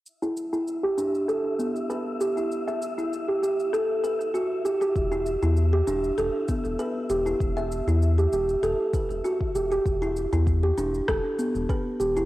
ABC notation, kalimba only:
X:1
M:4/4
L:1/16
Q:"Swing 16ths" 1/4=98
K:Em
V:1 name="Kalimba"
z E z E z G D z A z B,2 B2 G E | z e2 E2 G G2 A2 B2 F2 G G | z E z E z G D z A z B,2 B2 G E | z e2 E2 G G2 A2 B2 F2 G G |
z E z E z G D z A z B,2 B2 G E |]